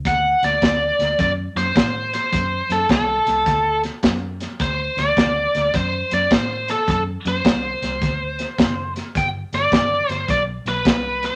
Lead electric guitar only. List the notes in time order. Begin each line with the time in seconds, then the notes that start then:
0.07 F#5
0.44 D5
1.20 D5
1.57 C5
2.15 C5
2.72 A4
2.92 A4
4.61 C5
4.99 D5
5.75 C5
6.13 D5
6.33 C5
6.71 A4
6.90 A4
7.28 C5
9.18 G5
9.55 D5
10.11 C5
10.31 D5
10.68 B4
11.25 C5